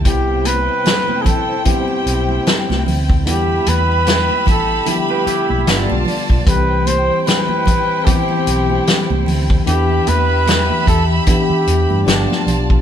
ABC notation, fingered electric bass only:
X:1
M:4/4
L:1/16
Q:"Swing 16ths" 1/4=75
K:C
V:1 name="Fingered electric bass" clef=bass
C,,4 z6 B,,,2 z C,, D,,2 | E,,2 E,,4 A,,,2 z3 B,,, G,,, B,,, z B,,, | C,,4 z6 B,,,2 z C,, D,,2 | E,,2 E,,4 E,,2 z E, E,, G,, G,,, z B,,,2 |]